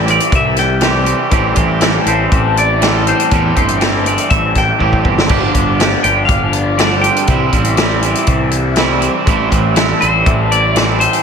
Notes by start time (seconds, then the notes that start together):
Already playing: A1 E3 C5
0.04 G3 C4 E4 G4, closed hi-hat
0.09 G3 D5
0.20 closed hi-hat
0.29 C2 C3 E3 G3 E4 G4, kick, closed hi-hat
0.35 E5
0.55 G3 E4 G4, snare, closed hi-hat
0.59 G5
0.80 C3 E3 G3 C4 E4 G4, snare, closed hi-hat
1.05 G3 C4 G4, closed hi-hat
1.30 A1 A2 E3 G3 C4 E4 G4 A4, kick, closed hi-hat
1.55 A1 G3 C4 E4 G4 A4, kick, closed hi-hat
1.80 E3 G3 C4 E4 G4 A4, snare, closed hi-hat
2.05 A1 C4 E4 G4 A4 C5, closed hi-hat
2.10 G3
2.30 A1 A2 E3 C4 E4 A4, kick, closed hi-hat
2.55 C4 E4 A4 D5, closed hi-hat
2.81 A2 E3 G3 C4 E4 G4 A4, snare, closed hi-hat
3.07 G3 C4 G4 C5, closed hi-hat
3.20 closed hi-hat
3.30 E2 A2 E3 G3 C4 E4 G4 A4, kick, closed hi-hat
3.56 G1 G3 C4 E4 G4 A4 C5, kick, closed hi-hat
3.68 closed hi-hat
3.80 E3 G3 C4 E4 G4 A4, snare, closed hi-hat
4.04 G3 C4 E4 G4 A4 D5, closed hi-hat
4.18 closed hi-hat
4.30 A1 A2 E3 C4 E4 A4 E5, kick, closed hi-hat
4.55 C4 E4 A4 G5, kick, snare, closed hi-hat
4.79 A1 A2 E3 G3 C4 E4 G4 A4, kick
4.93 kick
5.03 G1 G3 C4 G4, kick
5.18 snare
5.27 G1 G2 D3 F3 G3 B3 D4 G4, kick, crash
5.54 G1 F3 G3 B3 D4 G4, kick, closed hi-hat
5.78 F3 G3 B3 D4 G4, snare, closed hi-hat
6.03 G1 F3 G3 B3 D4 G4 G5, closed hi-hat
6.25 G2 D3 F3 G3 B3 G4 F5, kick, closed hi-hat
6.29 G1
6.52 F3 G3 B3 G4, closed hi-hat
6.77 G2 D3 F3 G3 B3 D4 G4 D5, snare, closed hi-hat
7.01 F3 C4 D4 G4 G5, closed hi-hat
7.16 closed hi-hat
7.26 C2 C3 E3 G3 C4 E4, kick, closed hi-hat
7.30 C4 E4
7.52 A1 G3 C4 E4, kick, closed hi-hat
7.64 closed hi-hat
7.75 E3 G3 C4 E4, snare, closed hi-hat
7.80 G3 C4 E4
7.99 G3 C4 E4, closed hi-hat
8.04 G3 C4 E4
8.15 closed hi-hat
8.25 C2 C3 E3 G3 C4 E4, kick, closed hi-hat
8.50 G3 C4 E4, closed hi-hat
8.73 C3 E3 G3 C4 E4, snare, closed hi-hat
8.77 E3 G3 C4 E4
9.01 G3 C4 E4, closed hi-hat
9.24 A1 A2 E3 G3 A3 C4 E4, kick, closed hi-hat
9.28 C4 E4
9.49 A1 A3 C4 E4, kick, closed hi-hat
9.53 G3
9.75 E3 G3 A3 C4 E4, snare, closed hi-hat
9.99 A1 A3 C4 E4 C5, closed hi-hat
10.04 G3
10.24 A1 A2 E3 A3 C4 E4, kick, closed hi-hat
10.49 A3 C4 E4 D5, closed hi-hat
10.74 A2 E3 G3 A3 C4 E4, snare, closed hi-hat
11.00 G3 C4 E4 C5, closed hi-hat
11.13 closed hi-hat